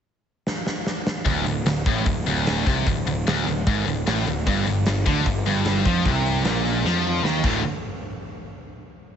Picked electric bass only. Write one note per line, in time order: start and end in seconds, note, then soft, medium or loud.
1.25 1.44 D1 medium
1.46 1.64 D1 medium
1.66 1.84 D1 medium
1.86 2.05 A1 medium
2.06 2.25 D1 medium
2.25 2.63 D1 medium
2.67 2.85 C2 medium
2.87 3.05 D1 medium
3.06 3.25 D1 medium
3.26 3.45 D1 medium
3.46 3.65 D1 medium
3.67 3.85 G#1 medium
3.86 4.05 D1 medium
4.06 4.25 A1 loud
4.26 4.45 D1 medium
4.46 4.65 G1 loud
4.66 4.85 G1 medium
4.87 5.05 G1 medium
5.06 5.24 D2 medium
5.26 5.44 G1 medium
5.47 5.83 G1 medium
5.86 6.04 F2 medium
6.05 6.42 C2 medium
6.45 6.82 A#1 loud
6.84 7.21 F2 medium
7.24 7.42 D#2 medium
7.44 7.62 D1 medium